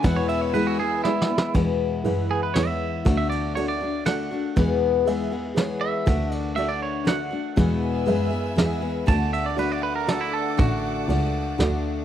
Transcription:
0.03 E2 B2 E3 G#3 B3 E4 B4 E5 F#5 G#5 E6, kick, ride
0.16 C#5
0.29 E5, ride
0.41 C#5
0.53 E3 G#3 B3 E4 G#4 B4, ride
0.67 F#4
0.79 E3 G#3 B3 E4 G#4
1.04 E3 G#3 B3 E4 G#4 D5, snare
1.22 snare
1.29 E3 G#3 B3 E4
1.38 snare
1.54 E2 B2 E3 G#3 B3 E4, kick, ride
2.04 F#2 E3 G#3 B3 E4 G#4 B4, ride
2.31 G#4
2.43 B4
2.54 E2 E3 G#3 B3 E4 G#4 C#5, snare, ride
2.67 E5
3.05 D2 D3 A3 D4 F#4, kick, ride
3.17 E5
3.30 D5, ride
3.55 D3 A3 D4 F#4 A4 C#5 D5, ride
3.68 D5
3.81 A3 D4 F#4
4.05 D3 A3 D4 F#4 A4 D5 F#5, snare, ride
4.31 A3 D4 F#4
4.56 E2 B2 E3 G#3 B3 G#4, kick, ride
5.06 E3 G#3 B3 G#4 B4 E5, ride
5.32 E3 G#3 B3 G#4
5.55 E3 G#3 B3 G#4 B4 C#5, snare, ride
5.81 E5
6.06 D2 D3 A3 D4 F#4, kick, ride
6.32 D5, ride
6.56 D3 A3 D4 F#4 A4 D5 E5, ride
6.69 D5
6.83 C#5
7.05 D3 A3 D4 F#4 A4 D5 F#5, snare, ride
7.31 A3 D4 F#4
7.56 E2 B2 E3 G#3 B3 G#4 B4 E5 G#5 E6, kick, ride
8.06 F#2 E3 G#3 B3 G#4 B4 E5, ride
8.30 E3 G#3 B3 G#4
8.56 E2 E3 G#3 B3 G#4 B4 E5, snare, ride
8.81 E3 G#3 B3 G#4
9.06 D2 D3 A3 D4 F#4 A4 D5 F#5 A5 D6, kick, ride
9.33 E5, ride
9.46 D5
9.56 D3 A3 D4 F#4 A4 B4 D5, ride
9.72 D5
9.83 B4
9.96 A#4
10.07 D3 A3 D4 F#4 A4 D5, snare, ride
10.21 E4
10.33 A4
10.57 A1 D3 A3 D4 F#4, kick, ride
11.08 C#2 A3 D4 F#4 A4 D5, ride
11.58 D2 D3 A3 D4 F#4 A4 D5, snare, ride

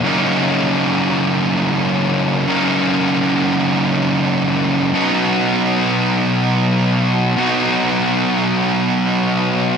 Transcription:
0.03 F#2 C#3 F#3 A#3 C#4 D#4
2.47 F#2 C#3 F#3 A#3 C#4 D#4
4.92 B2 F#3 B3 D#4 F#4
7.37 B2 F#3 B3 D#4 F#4

